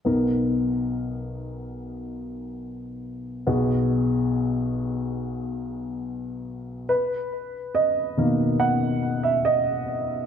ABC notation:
X:1
M:4/4
L:1/16
Q:1/4=70
K:B
V:1 name="Grand piano"
[B,DA]16 | [B,FG]16 | B4 d4 f3 e d4 |]
V:2 name="Grand piano" clef=bass
[B,,,B,,]16 | [B,,,B,,]16 | z6 [B,,D,A,]8- [B,,D,A,]2 |]